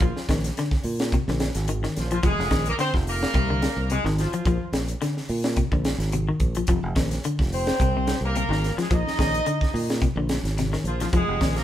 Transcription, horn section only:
Already playing: F3 F4
1.98 F3 F4
2.13 F3 F4
2.25 G#3 G#4
2.68 A#3 A#4
2.80 C4 C5
3.09 A#3 A#4
3.91 G#3 G#4
4.20 F3 F4
7.53 C4 C5
8.24 A#3 A#4
8.80 G#3 G#4
8.93 D#4 D#5
10.87 F3 F4
11.01 F3 F4
11.15 G#3 G#4
11.56 A#3 A#4

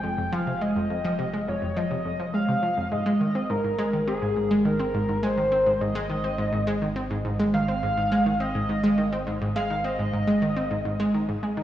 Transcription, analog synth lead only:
Already playing: G5
0.33 F5
0.62 D#5
1.48 C#5
1.77 D#5
2.35 F5
2.92 D#5
3.50 A#4
4.08 G#4
4.66 A#4
5.24 C5
5.81 D#5
7.54 F5
8.40 D#5
9.56 F5
9.85 D#5

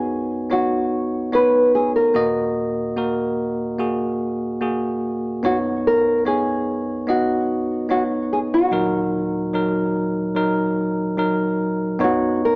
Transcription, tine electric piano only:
Already playing: B1 F#2 B3 D#4 F#4 C#5
0.50 B3 D#4 C#5
1.32 B3 D#4 C#5
2.14 D#2 A#2 A#3 F#4 D#5
2.96 A#3 F#4 A#4
3.79 A#3 F#4 G#4
4.61 A#3 F#4 G#4
5.43 B1 F#2 B3 D#4 C#5
6.25 B3 D#4 C#5
7.07 B3 D#4 D#5
7.89 B3 D#4 C#5
8.71 D#2 A#2 F#3 D#4 A#4
9.53 F#3 D#4 A#4
10.35 F#3 D#4 A#4
11.17 F#3 D#4 A#4
11.99 B1 F#2 B3 D#4 C#5

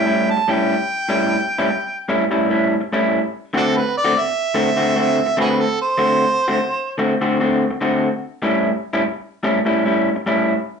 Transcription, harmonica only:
Already playing: G5
0.30 A5
0.51 G5
3.57 D4 F#4 A4
3.76 B4
3.97 D5
4.19 E5
5.40 F#4 G#4 B4
5.61 A4
5.81 C5

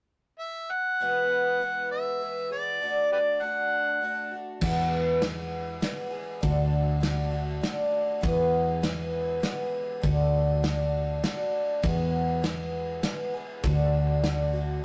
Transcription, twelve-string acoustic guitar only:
1.00 E2 B2 E3 G#3 B3 G#4
1.60 E3 G#3 B3 G#4
2.21 E3 G#3 B3 G#4
2.51 E3 G#3 B3 G#4
2.81 D3 A3 D4 F#4
3.40 D3 A3 D4 F#4
4.01 D3 A3 D4 F#4
4.31 A3 D4 F#4
4.61 E2 B2 E3 G#3 B3 G#4
5.21 E3 G#3 B3 G#4
5.81 E3 G#3 B3 G#4
6.11 E3 G#3 B3 G#4
6.41 D3 A3 D4 F#4
7.00 D3 A3 D4 F#4
7.31 A3 D4 F#4
7.61 D3 A3 D4 F#4
8.21 E2 B2 E3 G#3 B3 G#4
8.82 E3 G#3 B3 G#4
9.40 E3 G#3 B3 G#4
10.02 D3 A3 D4 F#4
10.63 D3 A3 D4 F#4
11.23 D3 A3 D4 F#4
11.82 E2 B2 E3 G#3 B3 G#4
12.42 E3 G#3 B3
12.46 G#4
13.02 E3 G#3 B3 G#4
13.34 E3 G#3 B3 G#4
13.63 D3 A3 D4 F#4
14.24 D3 A3 D4 F#4
14.53 A3 D4 F#4

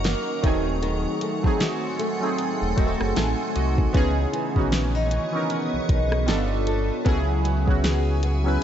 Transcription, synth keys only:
Already playing: F#3 A#3 C#4 D#4 A#4
0.42 F#3 A3 C4 D#4
0.47 G#4
1.43 F#3 A3 C4 D#4
1.47 G#4
2.20 F#3 A3 C4 D#4
2.25 G#4
2.76 F#3 A3 C4 D#4
2.80 G#4
2.87 A4
3.17 G#5
3.56 D#5
3.93 E3 B3 C#4 D#4
3.97 G#4
4.55 D#3 B3 C#4 D#4
4.59 E3 F#4
5.32 E3 B3 C#4 D#4
5.37 A#4
6.26 G3 B3 D4 F4
6.31 A4
7.04 F#3 B3 C#4 E4
7.09 G#4
7.66 F#3 B3 C#4 E4
7.70 F#4
8.44 F#3 B3 C#4 E4
8.48 B4

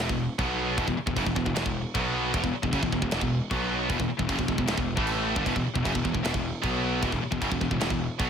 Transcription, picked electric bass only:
0.01 E1
0.09 E1
0.39 B1
0.78 E1
0.88 E1
0.98 muted picked electric bass stroke
1.07 E1
1.17 F#1
1.27 E1
1.37 E1
1.46 E1
1.56 E1
1.66 E1
1.95 B1
2.34 E1
2.43 E1
2.54 muted picked electric bass stroke
2.63 E1
2.73 F#1
2.82 E1
2.93 E1
3.02 E1
3.12 E1
3.22 E1
3.51 B1
3.89 E1
4.00 E1
4.09 muted picked electric bass stroke
4.19 E1
4.29 F#1
4.39 E1
4.48 E1
4.58 E1
4.68 E1
4.78 E1
4.97 A1
5.36 G1
5.46 E1
5.56 E1
5.65 muted picked electric bass stroke
5.75 E1
5.85 F#1
5.96 E1
6.05 E1
6.15 E1
6.24 E1
6.34 E1
6.64 B1
7.03 E1
7.12 E1
7.22 muted picked electric bass stroke
7.32 E1
7.42 F#1
7.51 E1
7.61 E1
7.71 E1
7.80 E1
7.91 E1
8.20 B1

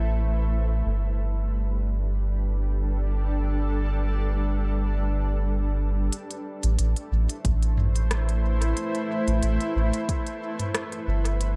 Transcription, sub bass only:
Already playing: A1
0.86 G1
6.63 A1
6.79 A1
7.12 A1
7.45 A1
9.27 A1
9.43 A1
9.76 A1
11.07 G1

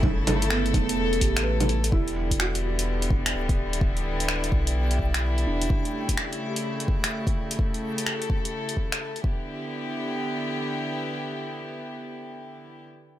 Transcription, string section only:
Already playing: C#3 A3 E4
0.03 A4
1.93 D3 G3 B3 E4
5.70 C#3 A3
7.59 A4
9.24 D3 B3 E4 G4

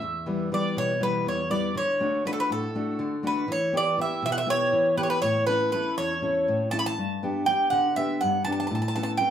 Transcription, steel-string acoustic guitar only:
0.02 E2
0.26 E3 G3 B3
0.52 E3 G3 B3
0.77 B2
1.00 E3 G3 B3
1.26 E2
1.50 E3 G3 B3
1.75 D3
2.00 A3 D4 F#4
2.25 A3 D4 F#4
2.50 A2
2.75 A3 D4 F#4
2.99 D3
3.23 A3 D4 F#4
3.48 E3
3.73 B3 E4 G4
3.98 B3 E4 G4
4.22 B2
4.47 B3 E4 G4
4.73 E3
4.97 B3 E4 G4
5.23 A2
5.48 C#4 E4 A4
5.73 C#4 E4 A4
5.98 E2
6.22 C#4 E4 A4
6.48 A2
6.73 C#4 E4 A4
6.98 G2
7.23 B3 D4 G4
7.47 B3 D4 G4
7.72 D3
7.97 B3 D4 G4
8.23 G2
8.46 B3 D4 G4
8.71 A2
8.96 B3 C#4 A4
9.21 B3 C#4 A4

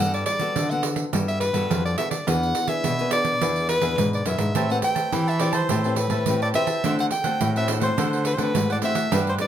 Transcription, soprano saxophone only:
0.14 D5
0.26 D5
0.70 F#5
1.28 E5
1.40 B4
1.85 D5
1.98 E5
2.11 D5
2.28 F#5
2.68 E5
3.12 D5
3.70 B4
4.15 D5
4.26 E5
4.71 F#5
4.84 G5
5.29 E5
5.41 D5
5.54 C5
5.98 B4
6.42 D5
6.55 E5
7.00 F#5
7.12 G5
7.57 E5
7.83 C5
8.27 B4
8.34 C5
8.43 B4
8.72 D5
8.85 E5
9.29 C5
9.41 D5

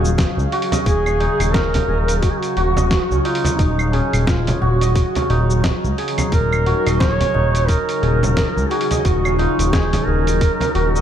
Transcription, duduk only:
Already playing: F#4
0.86 G#4
1.54 A#4
2.21 F#4
2.30 G#4
2.38 F#4
3.23 F4
3.58 D#4
3.92 C#4
4.27 F4
4.61 F#4
6.32 A#4
6.99 C#5
7.68 A#4
8.69 G#4
9.04 F#4
9.38 F4
9.72 G#4
10.05 A#4

